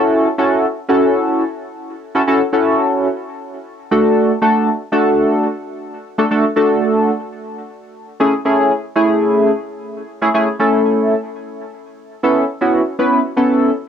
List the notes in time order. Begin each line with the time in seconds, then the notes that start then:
Already playing: C#4 E4 F#4 A4
0.38 C#4 E4 F#4 A4
0.89 C#4 E4 F#4 A4
2.15 C#4 E4 F#4 A4
2.27 C#4 E4 F#4 A4
2.52 C#4 E4 F#4 A4
3.91 A3 D4 F#4 A4
4.42 A3 D4 F#4 A4
4.92 A3 D4 F#4 A4
6.18 A3 D4 F#4 A4
6.31 A3 D4 F#4 A4
6.56 A3 D4 F#4 A4
8.20 A3 C#4 E4 G#4
8.45 A3 C#4 E4 G#4
8.95 A3 C#4 E4 G#4
10.21 A3 C#4 E4 G#4
10.34 A3 C#4 E4 G#4
10.59 A3 C#4 E4 A4
12.23 B3 C#4 E4 A4
12.61 B3 C#4 E4 F#4
12.99 B3 C#4 E4 B4
13.37 B3 C#4 E4 A4